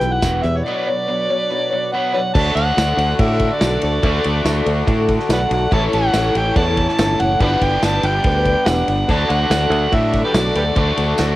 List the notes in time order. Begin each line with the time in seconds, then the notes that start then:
Already playing: E4 G4 B4 E5 G5
0.01 B1 E2 B2 E4 G4 B4, closed hi-hat
0.13 F#5
0.21 E1 E2 B2 E3 B3 E4 G4 B4, kick, snare, closed hi-hat, tambourine
0.43 E2 B2 G4 B4 E5, closed hi-hat
0.47 E4
0.57 C#5
0.64 B2 F#3 B3 D4 F#4 B4 C#5 D5
0.86 B2 F#3 B3 D4 F#4 C#5
1.07 B2 F#3 B3 D4 F#4 C#5
1.29 B2 F#3 B3 D4 F#4 C#5
1.50 B2 F#3 B3 D4 F#4 C#5
1.69 B2 B3 D4 F#4 C#5
1.74 F#3
1.92 B2 F#3 B3 D4 F#4 C#5 F#5
2.12 B2 B3 D4 F#4 B4 C#5 D5 F#5
2.16 F#3
2.34 D2 D3 A3 D4 F#4 A4 D5 A5, kick, crash
2.38 F#4
2.55 D2 D4 F#4 A4 F#5, ride
2.76 D2 D3 D4 F#4 A4 D5, snare, ride, tambourine
2.96 D2 D4 F#4 A4, ride
3.19 A2 D3 D4 F#4 A4 E5, kick, ride
3.40 D4 F#4 A4, kick, ride
3.54 D5
3.59 B1 D3 D4 F#4 A4 D5, snare, ride, tambourine
3.80 D2 D4 F#4 A4, ride
3.84 D5
4.03 D2 D3 A3 D4 F#4 A4 D5, kick, ride
4.23 D2 D4 F#4 A4, ride
4.44 D2 D3 D4 F#4 A4 D5, snare, ride, tambourine
4.64 D2 D4 F#4 A4, ride
4.87 A2 D3 D4 F#4 A4 D5, kick, ride
5.08 D4 F#4 A4, kick, ride
5.20 snare
5.28 B1 D3 D4 F#4 A4 B4, snare, ride, tambourine
5.33 B4 D5 F#5
5.49 B1 D4 F#4 A4, ride
5.53 F#5
5.71 A1 A2 E3 A3 C#4 E4 A4 C#5 A5, kick, ride
5.92 A1 C#4 E4 A4 F#5, ride
6.12 A1 A3 C#4 E4 A4 C#5, snare, ride, tambourine
6.34 A1 C#4 E4 A4 G5, ride
6.56 E2 A2 A3 C#4 E4 A4 B4 D5 F#5 A5, kick, ride
6.76 C#4 E4 A4, kick, ride
6.89 A5, snare
6.98 G1 A3 C#4 E4 A4 C#5, snare, ride, tambourine
7.20 F#1 C#4 E4 A4 F#5, ride
7.39 G1 G2 D3 G3 B3 D4 G4 B4 D5 F#5, kick, ride
7.43 G4 D5
7.61 G1 B3 D4 B4 G5, kick, ride
7.82 G1 G3 B3 D4 G4 B4 D5 A5, snare, ride, tambourine
8.03 G1 B3 D4 B4 G5, ride
8.24 D2 G3 B3 D4 G4 B4 D5, kick, ride
8.46 B3 D4 B4, kick, ride
8.66 E1 G3 B3 D4 G4 B4 D5 F#5, snare, ride, tambourine
8.87 G1 B3 D4 B4 F#5, ride
9.08 D2 D3 F#3 A3 D4 F#4 A4 D5 A5, kick, crash
9.29 D2 D4 F#4 A4 F#5, ride
9.50 D2 D3 D4 F#4 A4 D5, snare, ride, tambourine
9.54 A4
9.70 D2 F#4 A4, ride
9.74 D4
9.92 A2 D3 D4 F#4 A4 D5 E5, kick, ride
10.12 D4 F#4 A4, kick, ride
10.25 G4 B4 D5
10.33 B1 D3 D4 F#4 A4 D5, snare, ride, tambourine
10.55 D2 D4 F#4 G4 A4 B4 D5, ride
10.75 D2 D3 F#3 A3 D4 F#4 A4 D5, kick, ride
10.97 D2 D4 F#4 A4, ride
11.18 D2 D3 D4 F#4 A4 D5, snare, ride, tambourine